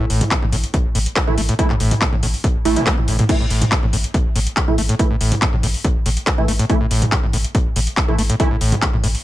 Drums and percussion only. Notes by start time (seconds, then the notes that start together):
0.10 open hi-hat
0.21 closed hi-hat, mid tom
0.31 kick, clap, closed hi-hat
0.42 mid tom
0.52 open hi-hat
0.64 closed hi-hat
0.74 kick, closed hi-hat
0.95 open hi-hat
1.06 closed hi-hat
1.16 kick, clap, closed hi-hat
1.27 mid tom
1.38 open hi-hat
1.49 closed hi-hat
1.59 kick, closed hi-hat
1.70 clap, mid tom
1.80 open hi-hat
1.91 closed hi-hat, mid tom
2.01 kick, clap, closed hi-hat
2.13 mid tom
2.23 open hi-hat
2.34 open hi-hat
2.44 kick, closed hi-hat
2.65 open hi-hat
2.76 closed hi-hat
2.87 kick, clap, closed hi-hat
2.98 mid tom
3.08 open hi-hat
3.19 closed hi-hat, mid tom
3.29 kick, closed hi-hat, crash
3.50 open hi-hat
3.62 closed hi-hat, mid tom
3.72 kick, clap, closed hi-hat
3.83 mid tom
3.93 open hi-hat
4.04 closed hi-hat
4.14 kick, closed hi-hat
4.36 open hi-hat
4.47 closed hi-hat
4.57 kick, clap, closed hi-hat
4.68 mid tom
4.78 open hi-hat
4.89 closed hi-hat
4.99 kick, closed hi-hat
5.21 open hi-hat
5.32 closed hi-hat, mid tom
5.42 kick, clap, closed hi-hat
5.53 mid tom
5.63 open hi-hat
5.74 open hi-hat
5.84 kick, closed hi-hat
6.06 open hi-hat
6.17 closed hi-hat
6.27 kick, clap, closed hi-hat
6.38 mid tom
6.48 open hi-hat
6.59 closed hi-hat
6.70 kick, closed hi-hat
6.91 open hi-hat
7.02 closed hi-hat, mid tom
7.12 kick, clap, closed hi-hat
7.23 mid tom
7.33 open hi-hat
7.44 closed hi-hat
7.55 kick, closed hi-hat
7.76 open hi-hat
7.87 closed hi-hat
7.97 kick, clap, closed hi-hat
8.08 mid tom
8.18 open hi-hat
8.30 closed hi-hat
8.40 kick, closed hi-hat
8.61 open hi-hat
8.72 closed hi-hat, mid tom
8.82 kick, clap, closed hi-hat
8.93 mid tom
9.04 open hi-hat
9.15 open hi-hat